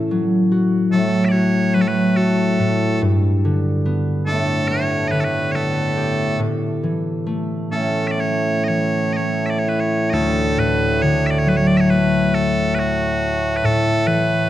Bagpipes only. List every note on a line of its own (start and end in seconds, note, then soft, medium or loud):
0.92 3.01 A2 medium
0.92 3.01 A3 medium
0.92 1.25 A4 medium
1.25 1.32 D5 medium
1.25 1.28 E5 medium
1.32 1.74 C#5 medium
1.74 1.81 B4 medium
1.81 1.88 A4 medium
1.88 2.16 B4 medium
2.16 3.01 A4 medium
4.27 6.40 A2 medium
4.27 6.40 A3 medium
4.27 4.68 A4 medium
4.68 5.08 C#5 medium
5.08 5.20 B4 medium
5.08 5.11 D#5 medium
5.20 5.24 A4 medium
5.20 5.52 B4 medium
5.52 6.40 A4 medium
5.52 5.55 C#5 medium
7.72 14.49 A2 medium
7.72 14.49 A3 medium
7.72 8.07 A4 medium
8.07 8.20 D5 medium
8.07 8.11 E5 medium
8.20 8.64 C#5 medium
8.64 8.68 D#5 medium
8.68 9.13 C#5 medium
9.13 9.46 C#5 medium
9.13 9.17 D#5 medium
9.46 9.59 D5 soft
9.46 9.50 E5 soft
9.59 9.69 C#5 soft
9.69 9.80 B4 soft
9.80 10.10 C#5 soft
10.10 10.59 A4 medium
10.10 10.14 D#5 medium
10.59 11.02 B4 medium
11.02 11.26 C#5 medium
11.26 11.39 D5 medium
11.26 11.30 E5 medium
11.39 11.49 C#5 medium
11.48 11.57 B4 medium
11.57 11.67 C#5 medium
11.67 11.77 D5 medium
11.77 11.90 C#5 medium
11.77 11.80 E5 medium
11.90 12.34 B4 medium
12.34 12.75 A4 medium
12.75 12.79 B4 medium
12.79 13.56 F#4 medium
13.56 13.65 B4 medium
13.65 14.07 A4 medium
14.07 14.49 B4 medium